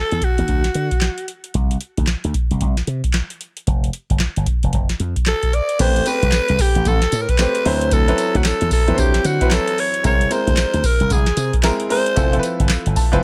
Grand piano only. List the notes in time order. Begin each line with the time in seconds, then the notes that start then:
5.79 A3 C4 G4 B4
6.06 A3 C4 G4 B4
7.39 A3 C4 G4 C5
7.65 F#3 C4 E4 B4
8.08 F#3 C4 E4 B4
8.87 F#3 C4 E4 B4
8.95 C5
9.41 E3 C4 E4 B4
9.47 F#3
10.03 G#3 C4 E4 A#4
10.30 G#3 C4 E4 A#4
11.63 G#3 C4 E4 A#4
11.89 G#3 C4 E4 A#4
12.16 F3 C4 E4 A4
12.32 F3 C4 E4 A4
12.39 B4
12.96 A5
13.12 F3 C4 E4 B4